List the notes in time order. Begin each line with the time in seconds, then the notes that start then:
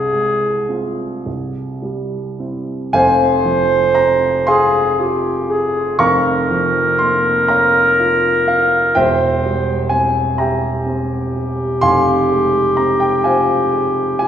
Already playing: C2 G#4
0.13 G#3
0.69 C4 F4
1.26 C2
1.82 G3
2.39 C4 E4
2.93 F1 F2 C5 F5 G#5
3.45 F3
3.95 C4 A#5
4.47 G#4 F5 G#5 C6
4.99 F4 G4
5.49 G#4
5.99 F1 F2 A#4 F5 A#5 C#6
6.51 F3
6.99 A#3 C6
7.48 A#4 C#5 F5 A#5
7.99 F4
8.48 A#4 F5
8.95 E1 E2 C5 E5 G5
9.44 G3
9.89 C4 G#5
10.38 G4 E5 G5 A#5
10.86 C4
11.35 G4
11.81 F1 F2 F5 G#5 C6
12.31 G#3
12.77 C4 A#5
13.00 G5
13.24 F4 C5 F5 G#5
13.72 G#4
14.19 F4 G#5